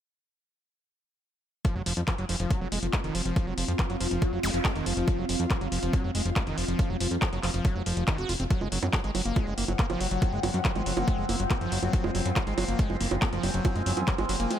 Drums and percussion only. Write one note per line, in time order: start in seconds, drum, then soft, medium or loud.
1.65 kick loud
1.65 closed hi-hat medium
1.86 open hi-hat loud
1.97 closed hi-hat medium
2.08 kick loud
2.08 clap loud
2.08 closed hi-hat medium
2.18 closed hi-hat soft
2.29 open hi-hat loud
2.40 closed hi-hat medium
2.50 kick loud
2.50 closed hi-hat medium
2.72 open hi-hat loud
2.83 closed hi-hat medium
2.93 kick loud
2.93 clap loud
2.93 closed hi-hat medium
3.04 closed hi-hat soft
3.15 open hi-hat loud
3.26 closed hi-hat medium
3.36 kick loud
3.36 closed hi-hat medium
3.58 open hi-hat loud
3.68 closed hi-hat medium
3.79 kick loud
3.79 clap loud
3.79 closed hi-hat medium
3.90 closed hi-hat soft
4.00 open hi-hat loud
4.11 closed hi-hat medium
4.22 kick loud
4.22 closed hi-hat medium
4.43 open hi-hat loud
4.54 closed hi-hat medium
4.65 kick loud
4.65 clap loud
4.65 closed hi-hat medium
4.76 closed hi-hat soft
4.86 open hi-hat loud
4.97 closed hi-hat medium
5.08 kick loud
5.08 closed hi-hat medium
5.29 open hi-hat loud
5.40 closed hi-hat medium
5.50 kick loud
5.50 clap loud
5.50 closed hi-hat medium
5.61 closed hi-hat soft
5.72 open hi-hat loud
5.83 closed hi-hat medium
5.93 kick loud
5.93 closed hi-hat medium
6.15 open hi-hat loud
6.25 closed hi-hat soft
6.36 kick loud
6.36 clap loud
6.36 closed hi-hat medium
6.47 closed hi-hat soft
6.58 open hi-hat loud
6.68 closed hi-hat soft
6.79 kick loud
6.79 closed hi-hat medium
7.00 open hi-hat loud
7.11 closed hi-hat medium
7.22 kick loud
7.22 clap loud
7.22 closed hi-hat medium
7.33 closed hi-hat soft
7.43 clap medium
7.43 open hi-hat loud
7.54 closed hi-hat medium
7.65 kick loud
7.65 closed hi-hat medium
7.86 open hi-hat loud
7.97 closed hi-hat medium
8.08 kick loud
8.08 clap loud
8.08 closed hi-hat medium
8.18 closed hi-hat soft
8.29 open hi-hat loud
8.40 closed hi-hat soft
8.50 kick loud
8.50 closed hi-hat medium
8.61 high bongo soft
8.72 open hi-hat loud
8.83 closed hi-hat medium
8.83 high bongo medium
8.93 kick loud
8.93 clap loud
8.93 closed hi-hat medium
9.04 closed hi-hat soft
9.15 open hi-hat loud
9.15 high bongo soft
9.26 closed hi-hat medium
9.36 kick loud
9.36 closed hi-hat medium
9.36 high bongo medium
9.58 open hi-hat loud
9.68 closed hi-hat medium
9.68 high bongo soft
9.79 kick loud
9.79 clap loud
9.79 closed hi-hat medium
9.90 closed hi-hat soft
9.90 high bongo medium
10.01 open hi-hat loud
10.11 closed hi-hat soft
10.22 kick loud
10.22 closed hi-hat medium
10.22 high bongo soft
10.43 open hi-hat loud
10.43 high bongo medium
10.54 closed hi-hat medium
10.65 kick loud
10.65 clap loud
10.65 closed hi-hat medium
10.76 closed hi-hat soft
10.76 high bongo soft
10.86 open hi-hat loud
10.97 closed hi-hat medium
10.97 high bongo medium
11.08 kick loud
11.08 closed hi-hat medium
11.29 open hi-hat loud
11.29 high bongo soft
11.40 closed hi-hat medium
11.50 kick loud
11.50 clap loud
11.50 closed hi-hat medium
11.50 high bongo medium
11.61 closed hi-hat soft
11.72 open hi-hat loud
11.83 closed hi-hat medium
11.83 high bongo soft
11.93 kick loud
11.93 closed hi-hat medium
12.04 high bongo medium
12.15 open hi-hat loud
12.26 closed hi-hat medium
12.36 kick loud
12.36 clap loud
12.36 closed hi-hat medium
12.36 high bongo soft
12.47 closed hi-hat soft
12.58 open hi-hat loud
12.58 high bongo medium
12.68 closed hi-hat medium
12.79 kick loud
12.79 closed hi-hat medium
12.90 high bongo soft
13.01 open hi-hat loud
13.11 closed hi-hat medium
13.11 high bongo medium
13.22 kick loud
13.22 clap loud
13.22 closed hi-hat medium
13.33 closed hi-hat soft
13.43 open hi-hat loud
13.43 high bongo soft
13.54 closed hi-hat medium
13.65 kick loud
13.65 closed hi-hat medium
13.65 high bongo medium
13.76 closed hi-hat soft
13.86 open hi-hat loud
13.97 closed hi-hat medium
13.97 high bongo soft
14.08 kick loud
14.08 clap loud
14.08 closed hi-hat medium
14.18 closed hi-hat soft
14.18 high bongo medium
14.29 open hi-hat loud
14.40 closed hi-hat medium
14.51 closed hi-hat medium
14.51 high bongo soft